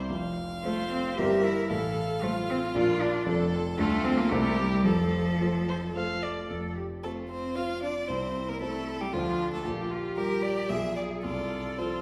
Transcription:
Already playing: grand piano C2 C3 G3 E4 C5, viola C5
0.10 grand piano F1 F2, violin F5
0.64 cello A3, grand piano A3 F4 C5, viola C5
0.91 cello C4
1.17 grand piano G1 G2 A#3 E4 C5, cello G4, viola A#4, violin E5
1.45 cello E4
1.70 grand piano A1 A2, viola A4, violin F5
2.22 cello A3, grand piano A3 F4 C5, viola F4
2.50 cello C4
2.75 grand piano A#1 A#2 D4 F4 A#4, cello F4, violin D5
3.02 cello D4
3.26 grand piano F1 F2 C4 F4 A4, viola A4, violin A4
3.78 grand piano D2 D3 D4 F4 A4, cello A3, viola F4
4.04 cello C4
4.17 cello A#3
4.29 grand piano C2 C3 A#3 E4 C5, cello A3, viola G4, violin A#4
4.57 cello G3
4.84 grand piano F1 F2, cello F3, violin A4, viola A4
5.41 grand piano A3 F4 C5, viola A4
5.69 viola C5
5.96 grand piano A3 F4 C5, viola F5
6.23 viola D5
6.49 grand piano F1 F2, cello A4
6.77 cello G4
7.03 viola A3, grand piano C4 F4 C5, cello F4, violin A4
7.29 viola C4, violin C5
7.55 grand piano C4 F4 C5, viola F4, violin F5
7.82 viola D4, violin D5
8.08 grand piano C2 C3, viola C4, cello E4, violin C5
8.48 viola A#3, violin A#4
8.61 viola A3, grand piano C4 E4 C5, violin A4
9.01 viola G3, violin G4
9.13 grand piano D2 D3 A3 F4 C5, viola F3, cello D4, violin F4
9.53 viola A3, violin A4
9.65 grand piano A#1 A#2, cello F4, viola G4
9.91 viola F4, cello G4
10.17 grand piano G3 F4 A#4, viola G4, violin A#4
10.42 violin D5
10.69 grand piano B1 B2 F3 F4 G#4, viola G#4, cello G#4, violin E5
10.96 violin D5
11.23 grand piano C2 C3, viola F4, cello A4, violin D5
11.78 grand piano F3 F4 A4, viola F4, violin C5

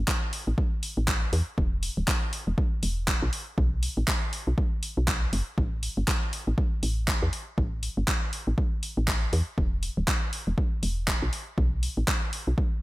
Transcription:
0.08 kick, clap
0.33 open hi-hat
0.47 fm bass A1
0.58 kick
0.83 open hi-hat
0.97 fm bass A1
1.08 kick, clap
1.33 fm bass E2, open hi-hat
1.58 fm bass E1, kick
1.83 open hi-hat
1.97 fm bass D1
2.08 kick, clap
2.33 open hi-hat
2.47 fm bass E1
2.58 kick
2.83 fm bass E1, open hi-hat
3.08 kick, clap
3.22 fm bass B1
3.33 open hi-hat
3.58 fm bass B1, kick
3.83 open hi-hat
3.97 fm bass A1
4.08 kick, clap
4.33 open hi-hat
4.47 fm bass B1
4.58 kick
4.83 open hi-hat
4.97 fm bass B1
5.08 kick, clap
5.33 fm bass F#1, open hi-hat
5.58 fm bass A1, kick
5.83 open hi-hat
5.97 fm bass G1
6.08 kick, clap
6.33 open hi-hat
6.47 fm bass A1
6.58 kick
6.83 fm bass A1, open hi-hat
7.08 kick, clap
7.22 fm bass E2
7.33 open hi-hat
7.58 fm bass A1, kick
7.83 open hi-hat
7.97 fm bass G1
8.08 kick, clap
8.33 open hi-hat
8.47 fm bass A1
8.58 kick
8.83 open hi-hat
8.97 fm bass A1
9.08 kick, clap
9.33 fm bass E2, open hi-hat
9.58 fm bass E1, kick
9.83 open hi-hat
9.97 fm bass D1
10.08 kick, clap
10.33 open hi-hat
10.47 fm bass E1
10.58 kick
10.83 fm bass E1, open hi-hat
11.08 kick, clap
11.22 fm bass B1
11.33 open hi-hat
11.58 fm bass B1, kick
11.83 open hi-hat
11.97 fm bass A1
12.08 kick, clap
12.33 open hi-hat
12.47 fm bass B1
12.58 kick

